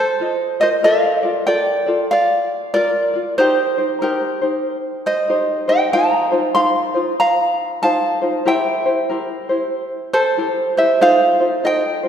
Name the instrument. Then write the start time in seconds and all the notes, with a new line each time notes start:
ukulele
Already playing: F4 C5 D#5
0.00 A4
0.20 F4 C5 D#5
0.60 F4 A#4 C5 D#5
0.83 F4 A4 A#4 D5 F5
1.23 F4 A4 D5
1.46 F4 A4 A#4 D5 G5
1.86 F4 A4 D5
2.11 D5 F5
2.74 F4 A#4 D5
3.14 F4 D5
3.38 D#4 G4 A#4 C5
3.78 D#4 G4 C5
4.01 D#4 G4 A#4 C5
4.42 D#4 G4 C5
5.06 C5 D#5
5.28 D#4 G4 A#4 C5
5.68 D#4 G4 C5 D#5 G5
5.92 D#4 F4 A#4 C5 F5 A#5
6.32 D#4 F4 C5
6.54 D#4 F4 A#4 C5 F5 C6
6.94 D#4 F4 C5
7.20 F5 A#5
7.82 D#4 F4 A#4 C5 F5 A5
8.22 D#4 F4 C5
8.45 E4 G4 A#4 C5 E5 G5
8.86 E4 G4 C5
9.09 E4 G4 A#4 C5
9.49 E4 G4 C5
10.13 A4 C5
10.37 E4 G4 C5
10.76 E4 G4 C5 E5
11.01 D#4 F4 A4 C5 F5
11.40 D#4 F4 C5
11.64 D#4 F4 A4 C5 D#5 G5
12.03 D#4 F4 C5